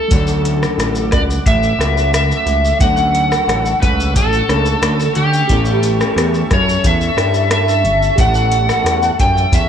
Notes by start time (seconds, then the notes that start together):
Already playing: A2 G3 C#4 E4 A4
0.08 D2 D3 F#3 A3 C#4 D4 F#4 A4 F#5 C#6 D6, kick, closed hi-hat, shaker
0.14 A4
0.27 shaker
0.45 closed hi-hat, shaker
0.63 cross-stick, shaker
0.78 A1, cross-stick, closed hi-hat, shaker
0.95 shaker
1.12 C#2 A3 F#4 D5, kick, cross-stick, closed hi-hat, shaker
1.30 shaker
1.46 A1 E5, kick, closed hi-hat, shaker
1.63 shaker
1.79 C#2 A3 C#4 F#4, cross-stick, closed hi-hat, shaker
1.98 shaker
2.14 E5, cross-stick, closed hi-hat, shaker
2.31 shaker
2.46 C#2, closed hi-hat, shaker
2.65 shaker
2.79 D2 D3 F#3 A3 C#4 D4 F#4 F#5 E6, kick, closed hi-hat, shaker
2.83 A4
2.97 shaker
3.15 closed hi-hat, shaker
3.32 cross-stick, shaker
3.48 A1, cross-stick, closed hi-hat, shaker
3.66 shaker
3.81 C#2 A3 C#4 F#4 B4, kick, closed hi-hat, shaker
4.00 shaker
4.16 A1 A4, kick, closed hi-hat, shaker
4.33 shaker
4.48 C#2 A3 C#4 D4 A4, cross-stick, closed hi-hat, shaker
4.66 shaker
4.82 D2, cross-stick, closed hi-hat, shaker
5.00 shaker
5.15 D2 G4, closed hi-hat, shaker
5.33 shaker
5.48 A1 A2 G3 C#4 E4 G4 A4 E5 A5, kick, closed hi-hat, shaker
5.53 A4
5.65 shaker
5.83 closed hi-hat, shaker
6.01 cross-stick, shaker
6.16 E2, cross-stick, closed hi-hat, shaker
6.34 shaker
6.51 F#2 C#4 E4 C#5, kick, cross-stick, closed hi-hat, shaker
6.69 shaker
6.84 E2 E5, kick, closed hi-hat, shaker
7.01 shaker
7.17 G2 G3 C#4 E4, cross-stick, closed hi-hat, shaker
7.34 shaker
7.51 E5, cross-stick, closed hi-hat, shaker
7.69 shaker
7.84 G1, closed hi-hat, shaker
8.03 shaker
8.16 A1 A2 G3 C#4 E4 G4, kick, closed hi-hat, shaker
8.20 A4 F#5
8.35 shaker
8.52 closed hi-hat, shaker
8.69 cross-stick, shaker
8.84 E2, cross-stick, closed hi-hat, shaker
9.03 shaker
9.19 F#2 C#4 E4 G5, kick, closed hi-hat, shaker
9.38 shaker
9.52 E2 E5, kick, closed hi-hat, shaker